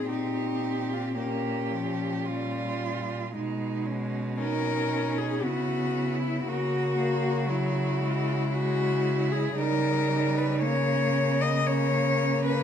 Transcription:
0.00 1.17 C4 soft
0.00 0.10 G#4 medium
0.08 3.35 A#2 soft
0.08 0.94 D#4 soft
0.08 1.14 G4 soft
0.93 1.19 F4 soft
1.16 1.72 A#3 soft
1.16 2.79 C#4 soft
1.16 2.27 G4 soft
1.71 2.28 F3 soft
2.25 3.33 G3 soft
2.25 3.34 F4 soft
3.33 5.44 B2 soft
3.33 4.40 G#3 soft
3.33 3.88 D#4 soft
3.87 4.39 C#4 soft
4.38 5.44 C#4 soft
4.38 5.43 D#4 soft
4.38 5.19 A#4 medium
5.18 5.44 G#4 soft
5.42 6.46 C#3 soft
5.42 6.46 B3 soft
5.42 6.46 E4 soft
5.42 6.21 F#4 medium
6.22 6.50 E4 soft
6.47 9.53 C#3 soft
6.47 6.96 A#3 soft
6.47 7.51 F#4 medium
6.47 8.49 F#4 soft
6.97 7.49 A#3 soft
7.47 8.01 F#3 soft
7.47 8.55 E4 medium
8.00 9.55 G#3 soft
8.53 9.55 E4 soft
8.53 9.33 F#4 medium
9.32 9.60 G#4 medium
9.56 12.63 C#3 soft
9.56 10.64 G3 soft
9.56 10.64 D#4 soft
9.56 10.39 A#4 medium
10.38 10.62 B4 medium
10.63 11.65 A#3 soft
10.63 11.65 C#4 soft
10.63 11.42 C#5 medium
11.41 11.68 D#5 medium
11.66 12.63 A#3 soft
11.66 12.63 C#4 soft
11.66 12.45 C#5 medium
12.46 12.63 B4 medium

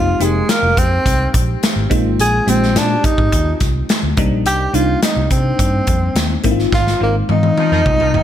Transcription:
0.00 0.12 F1 medium
0.00 0.12 G#3 medium
0.00 0.12 A#3 medium
0.00 0.12 C4 medium
0.00 0.13 D#4 medium
0.00 0.24 F4 medium
0.00 0.13 G4 medium
0.20 0.41 F1 medium
0.20 1.02 G#3 medium
0.20 0.52 G#3 medium
0.20 1.02 A#3 medium
0.20 1.02 C4 medium
0.20 1.03 D#4 medium
0.20 1.03 G4 medium
0.20 closed hi-hat medium
0.49 0.80 A#3 medium
0.49 snare loud
0.49 closed hi-hat medium
0.62 0.73 F1 medium
0.77 0.98 F2 medium
0.77 1.35 C4 medium
0.77 kick medium
0.77 closed hi-hat medium
1.06 1.26 C2 medium
1.06 kick medium
1.06 closed hi-hat medium
1.34 1.54 A#1 medium
1.34 kick medium
1.34 closed hi-hat medium
1.63 snare loud
1.63 closed hi-hat medium
1.76 1.86 G#1 medium
1.90 2.05 A#1 medium
1.90 2.36 G#3 medium
1.90 2.36 A#3 medium
1.90 2.36 C4 medium
1.90 2.36 D#4 medium
1.90 2.36 F4 medium
1.90 kick medium
1.90 closed hi-hat medium
2.05 2.15 G#1 medium
2.18 2.39 A#1 medium
2.18 2.50 G#4 loud
2.18 closed hi-hat medium
2.47 2.77 A#1 medium
2.47 3.29 G#3 medium
2.47 3.29 A#3 medium
2.47 3.29 C4 medium
2.47 2.79 C4 medium
2.47 3.29 D#4 medium
2.47 3.30 G4 medium
2.47 closed hi-hat medium
2.63 snare soft
2.76 2.96 A#2 medium
2.76 3.07 D4 medium
2.76 snare loud
2.76 closed hi-hat loud
3.04 3.61 D#4 medium
3.04 kick medium
3.04 closed hi-hat medium
3.18 3.28 G#2 medium
3.18 kick medium
3.32 3.53 D#2 medium
3.32 kick medium
3.32 closed hi-hat medium
3.60 3.81 C2 medium
3.60 kick medium
3.60 snare soft
3.60 closed hi-hat medium
3.89 snare loud
3.89 closed hi-hat medium
4.03 4.13 D2 medium
4.17 4.32 C2 medium
4.17 4.63 G3 medium
4.17 4.63 A#3 medium
4.17 4.63 C4 medium
4.17 4.63 D4 medium
4.17 4.63 D#4 loud
4.17 kick medium
4.17 closed hi-hat medium
4.32 4.46 A#1 medium
4.46 4.66 C2 medium
4.46 4.76 G4 loud
4.46 closed hi-hat medium
4.73 4.94 C2 medium
4.73 5.56 G3 medium
4.73 5.56 A#3 medium
4.73 5.56 C4 medium
4.73 5.56 D4 medium
4.73 5.56 D#4 medium
4.73 5.03 F4 medium
4.73 closed hi-hat medium
5.03 5.29 D#4 medium
5.03 snare loud
5.03 closed hi-hat loud
5.16 5.27 C2 loud
5.31 5.51 C3 medium
5.31 6.41 C4 medium
5.31 kick medium
5.31 closed hi-hat medium
5.59 5.79 G2 medium
5.59 kick medium
5.59 closed hi-hat medium
5.87 6.08 F2 medium
5.87 kick medium
5.87 closed hi-hat medium
6.15 6.36 D#2 medium
6.15 snare loud
6.15 closed hi-hat medium
6.44 6.65 G#1 medium
6.44 6.89 G#3 medium
6.44 6.90 A#3 medium
6.44 6.90 C4 medium
6.44 6.90 D#4 medium
6.44 6.51 E4 medium
6.44 kick medium
6.44 closed hi-hat medium
6.51 6.93 F4 loud
6.59 snare soft
6.72 6.93 G#1 medium
6.72 7.00 F4 loud
6.72 kick loud
6.72 snare medium
6.87 snare soft
7.00 7.21 G#1 medium
7.00 7.83 G#3 medium
7.00 7.83 A#3 medium
7.00 7.15 A#3 medium
7.00 7.83 C4 medium
7.00 7.83 D#4 medium
7.00 7.83 F4 medium
7.29 7.49 G#2 medium
7.29 8.23 D#4 medium
7.29 high tom medium
7.43 high tom medium
7.58 7.70 F3 medium
7.58 7.70 D#4 medium
7.58 7.70 A#4 medium
7.58 high tom medium
7.72 7.82 F2 medium
7.72 7.81 F3 medium
7.72 7.81 D#4 medium
7.72 7.81 A#4 medium
7.86 8.16 C2 medium
7.86 kick medium
7.86 mid tom medium
8.00 8.13 F3 medium
8.00 8.13 D#4 medium
8.00 8.12 A#4 medium
8.00 mid tom medium
8.14 8.23 G#1 medium
8.14 mid tom medium

